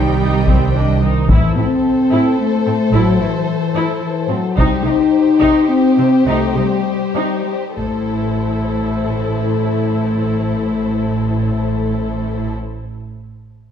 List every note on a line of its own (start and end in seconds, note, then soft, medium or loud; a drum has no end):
0.00 1.06 C2 medium
0.00 1.00 D#3 soft
0.00 0.98 G3 soft
0.00 1.02 G3 medium
0.00 0.18 D#4 soft
0.00 0.20 C5 soft
0.00 0.98 G5 soft
0.20 0.45 D#4 soft
0.20 0.46 D#5 soft
0.47 0.74 C4 soft
0.47 0.75 C5 soft
0.47 taiko medium
0.74 1.01 D4 soft
0.74 1.03 D#5 soft
1.01 1.27 D#3 soft
1.01 1.29 D#4 soft
1.01 1.30 C5 soft
1.29 1.54 A1 soft
1.29 1.37 A2 soft
1.29 1.56 E3 medium
1.29 1.55 E4 soft
1.29 4.53 A4 soft
1.29 taiko medium
1.33 4.55 C5 soft
1.56 1.65 A2 soft
1.56 2.38 C4 medium
1.56 1.66 E4 soft
2.12 2.20 A2 soft
2.12 2.37 E4 soft
2.39 2.92 A3 medium
2.66 2.75 A2 soft
2.66 2.74 C4 soft
2.92 3.18 A1 soft
2.92 3.02 A2 soft
2.92 3.21 F#3 medium
2.92 3.18 E4 soft
3.20 3.29 A2 soft
3.20 3.85 E3 soft
3.20 3.28 E4 soft
3.75 3.83 A2 soft
3.75 4.01 E4 soft
4.02 4.29 E3 medium
4.29 4.37 A2 soft
4.29 4.57 F#3 medium
4.29 4.38 C4 soft
4.57 4.82 C2 soft
4.57 4.65 C3 medium
4.57 4.85 G3 medium
4.57 4.83 D#4 medium
4.57 7.74 G4 soft
4.57 7.73 C5 soft
4.57 taiko soft
4.83 4.91 C3 soft
4.83 5.68 D#4 medium
4.83 4.93 D#4 soft
5.40 5.48 C3 soft
5.40 5.66 D#4 soft
5.40 taiko soft
5.69 6.25 C4 medium
5.98 6.06 C3 soft
5.98 6.06 C4 soft
6.26 6.54 C2 soft
6.26 6.34 C3 soft
6.26 6.55 A3 medium
6.26 6.54 D#4 soft
6.56 6.64 C3 soft
6.56 7.44 G3 soft
6.56 6.64 D#4 soft
7.15 7.23 C3 soft
7.15 7.44 D#4 soft
7.46 7.76 G3 soft
7.76 12.53 A1 soft
7.76 12.52 A2 soft
7.76 12.51 A3 soft
7.76 12.53 E4 soft
7.76 12.53 A4 soft
7.76 12.53 C5 soft
7.76 taiko soft